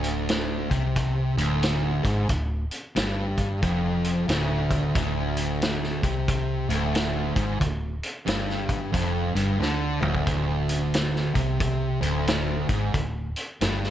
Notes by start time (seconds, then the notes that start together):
Already playing: D1 D2
0.04 closed hi-hat
0.29 snare, closed hi-hat
0.70 C2 C3, kick, closed hi-hat
0.96 kick, closed hi-hat
1.37 D1 D2, closed hi-hat
1.63 snare, closed hi-hat
2.04 G#1 G#2, kick, closed hi-hat
2.29 D1 D2, kick, closed hi-hat
2.71 closed hi-hat
2.96 G1 G2, snare, closed hi-hat
3.38 kick, closed hi-hat
3.63 F1 F2, kick, closed hi-hat
4.04 closed hi-hat
4.28 D1 D2, snare, closed hi-hat
4.70 kick, closed hi-hat
4.95 D1 D2, kick, closed hi-hat
5.37 closed hi-hat
5.62 snare, closed hi-hat
5.83 snare
6.03 C2 C3, kick, closed hi-hat
6.28 kick, closed hi-hat
6.69 D1 D2, closed hi-hat
6.95 snare, closed hi-hat
7.36 G#1 G#2, kick, closed hi-hat
7.61 D1 D2, kick, closed hi-hat
8.03 closed hi-hat
8.26 G1 G2, snare, closed hi-hat
8.50 snare
8.69 kick, closed hi-hat
8.93 F1 F2, kick, closed hi-hat
9.35 G1 G2, closed hi-hat
9.59 D2 D3, snare
10.01 D1 D2, mid tom
10.15 kick
10.26 D1 D2, kick, closed hi-hat
10.69 closed hi-hat
10.94 snare, closed hi-hat
11.16 snare
11.35 C2 C3, kick, closed hi-hat
11.60 kick, closed hi-hat
12.01 D1 D2, closed hi-hat
12.27 snare, closed hi-hat
12.69 G#1 G#2, kick, closed hi-hat
12.94 D1 D2, kick, closed hi-hat
13.36 closed hi-hat
13.61 G1 G2, snare, closed hi-hat
13.83 snare